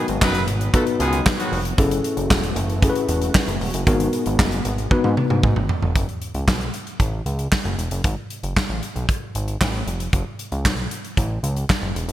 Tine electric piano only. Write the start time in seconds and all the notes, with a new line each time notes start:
Already playing: B3 D#4 F#4 A#4
0.74 B3 D#4 F#4 B4
1.78 C#4 E4 G#4 A4
2.83 C#4 E4 G#4 A4
2.89 B4
3.87 B3 D#4 F#4 A#4
4.91 B3 D#4 F#4 B4